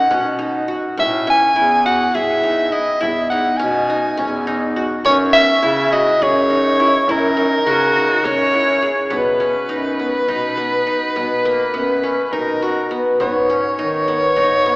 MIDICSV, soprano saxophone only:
0, 0, Header, 1, 2, 480
1, 0, Start_track
1, 0, Key_signature, 5, "major"
1, 0, Tempo, 581959
1, 811, Time_signature, 7, 3, 24, 8
1, 12172, End_track
2, 0, Start_track
2, 0, Title_t, "Soprano saxophone"
2, 0, Program_c, 0, 64
2, 0, Note_on_c, 0, 78, 86
2, 293, Note_off_c, 0, 78, 0
2, 820, Note_on_c, 0, 76, 89
2, 1039, Note_off_c, 0, 76, 0
2, 1071, Note_on_c, 0, 80, 97
2, 1507, Note_off_c, 0, 80, 0
2, 1532, Note_on_c, 0, 78, 88
2, 1772, Note_on_c, 0, 76, 104
2, 1784, Note_off_c, 0, 78, 0
2, 2245, Note_on_c, 0, 75, 86
2, 2257, Note_off_c, 0, 76, 0
2, 2489, Note_on_c, 0, 76, 88
2, 2502, Note_off_c, 0, 75, 0
2, 2713, Note_off_c, 0, 76, 0
2, 2718, Note_on_c, 0, 78, 78
2, 2943, Note_on_c, 0, 80, 79
2, 2955, Note_off_c, 0, 78, 0
2, 3914, Note_off_c, 0, 80, 0
2, 4167, Note_on_c, 0, 73, 89
2, 4275, Note_off_c, 0, 73, 0
2, 4396, Note_on_c, 0, 76, 113
2, 4887, Note_on_c, 0, 75, 103
2, 4900, Note_off_c, 0, 76, 0
2, 5137, Note_on_c, 0, 73, 108
2, 5150, Note_off_c, 0, 75, 0
2, 5865, Note_on_c, 0, 70, 89
2, 5877, Note_off_c, 0, 73, 0
2, 7053, Note_off_c, 0, 70, 0
2, 7511, Note_on_c, 0, 71, 82
2, 10094, Note_off_c, 0, 71, 0
2, 10094, Note_on_c, 0, 71, 57
2, 10161, Note_on_c, 0, 70, 85
2, 10173, Note_off_c, 0, 71, 0
2, 10704, Note_off_c, 0, 70, 0
2, 10898, Note_on_c, 0, 73, 103
2, 12172, Note_off_c, 0, 73, 0
2, 12172, End_track
0, 0, End_of_file